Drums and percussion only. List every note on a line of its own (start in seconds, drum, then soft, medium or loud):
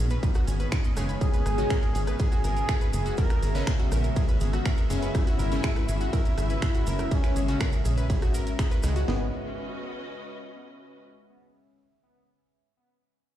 0.10 closed hi-hat medium
0.10 maracas soft
0.23 kick loud
0.23 closed hi-hat medium
0.23 ride medium
0.23 maracas medium
0.34 cross-stick medium
0.34 closed hi-hat medium
0.34 maracas soft
0.47 open hi-hat loud
0.47 maracas loud
0.60 closed hi-hat medium
0.60 maracas soft
0.72 finger snap loud
0.72 kick loud
0.72 closed hi-hat medium
0.72 ride medium
0.72 maracas medium
0.84 closed hi-hat medium
0.84 maracas soft
0.97 cross-stick medium
0.97 open hi-hat loud
0.97 maracas medium
1.09 closed hi-hat medium
1.09 maracas soft
1.21 kick loud
1.21 closed hi-hat medium
1.21 ride medium
1.21 maracas medium
1.33 closed hi-hat medium
1.33 maracas soft
1.46 cross-stick medium
1.46 open hi-hat loud
1.46 maracas medium
1.58 closed hi-hat medium
1.58 maracas soft
1.70 finger snap loud
1.70 kick loud
1.70 closed hi-hat medium
1.70 ride medium
1.70 maracas soft
1.83 closed hi-hat medium
1.95 open hi-hat loud
1.95 maracas medium
2.07 cross-stick medium
2.07 closed hi-hat medium
2.07 maracas soft
2.19 kick loud
2.19 closed hi-hat medium
2.19 ride medium
2.19 maracas medium
2.32 closed hi-hat medium
2.32 maracas soft
2.44 open hi-hat loud
2.44 maracas medium
2.57 closed hi-hat medium
2.57 maracas soft
2.69 finger snap loud
2.69 kick loud
2.69 cross-stick medium
2.69 closed hi-hat medium
2.69 ride medium
2.69 maracas soft
2.81 closed hi-hat medium
2.81 maracas soft
2.93 open hi-hat loud
2.93 maracas loud
3.06 closed hi-hat medium
3.06 maracas soft
3.17 kick loud
3.17 closed hi-hat medium
3.17 ride medium
3.17 maracas medium
3.30 finger snap soft
3.30 cross-stick medium
3.30 closed hi-hat medium
3.30 maracas soft
3.43 open hi-hat loud
3.43 maracas medium
3.55 closed hi-hat medium
3.55 maracas soft
3.67 finger snap loud
3.67 kick loud
3.67 closed hi-hat medium
3.67 ride medium
3.67 maracas soft
3.80 closed hi-hat medium
3.92 cross-stick medium
3.92 open hi-hat loud
3.92 maracas medium
4.04 closed hi-hat medium
4.04 maracas soft
4.16 kick loud
4.16 closed hi-hat medium
4.16 ride medium
4.16 maracas soft
4.28 closed hi-hat medium
4.28 maracas soft
4.40 open hi-hat loud
4.40 maracas medium
4.53 cross-stick medium
4.53 closed hi-hat medium
4.53 maracas soft
4.66 finger snap loud
4.66 kick loud
4.66 closed hi-hat medium
4.66 ride medium
4.66 maracas soft
4.77 closed hi-hat medium
4.77 maracas soft
4.90 open hi-hat loud
4.90 maracas medium
5.02 closed hi-hat medium
5.02 maracas soft
5.15 kick loud
5.15 cross-stick medium
5.15 closed hi-hat medium
5.15 ride medium
5.15 maracas medium
5.27 closed hi-hat medium
5.27 maracas soft
5.39 open hi-hat loud
5.39 maracas medium
5.52 closed hi-hat medium
5.52 maracas soft
5.63 finger snap loud
5.63 kick loud
5.63 closed hi-hat medium
5.63 ride medium
5.63 maracas soft
5.76 cross-stick medium
5.76 closed hi-hat medium
5.88 open hi-hat loud
5.88 maracas medium
6.01 closed hi-hat medium
6.01 maracas soft
6.13 kick loud
6.13 closed hi-hat medium
6.13 ride medium
6.13 maracas medium
6.25 closed hi-hat medium
6.25 maracas soft
6.38 cross-stick medium
6.38 open hi-hat loud
6.38 maracas medium
6.50 closed hi-hat medium
6.50 maracas soft
6.62 finger snap loud
6.62 kick loud
6.62 closed hi-hat medium
6.62 ride medium
6.62 maracas soft
6.75 closed hi-hat medium
6.75 maracas soft
6.87 open hi-hat loud
6.87 maracas medium
6.99 cross-stick medium
6.99 closed hi-hat medium
6.99 maracas soft
7.11 kick loud
7.11 closed hi-hat medium
7.11 ride medium
7.11 maracas soft
7.23 finger snap soft
7.23 closed hi-hat medium
7.23 maracas soft
7.36 open hi-hat loud
7.36 maracas medium
7.48 closed hi-hat medium
7.48 maracas soft
7.60 finger snap loud
7.60 kick loud
7.60 cross-stick medium
7.60 closed hi-hat medium
7.60 ride medium
7.60 maracas medium
7.72 closed hi-hat medium
7.72 maracas soft
7.85 open hi-hat loud
7.85 maracas medium
7.98 closed hi-hat medium
7.98 maracas soft
8.10 kick loud
8.10 closed hi-hat medium
8.10 ride medium
8.10 maracas medium
8.22 cross-stick medium
8.22 closed hi-hat medium
8.22 maracas soft
8.34 open hi-hat loud
8.34 maracas medium
8.47 closed hi-hat medium
8.47 maracas soft
8.59 finger snap loud
8.59 kick loud
8.59 closed hi-hat medium
8.59 ride medium
8.59 maracas medium
8.71 closed hi-hat medium
8.71 maracas soft
8.83 cross-stick medium
8.83 open hi-hat loud
8.83 maracas loud
8.96 closed hi-hat medium
8.96 maracas soft
9.08 snare loud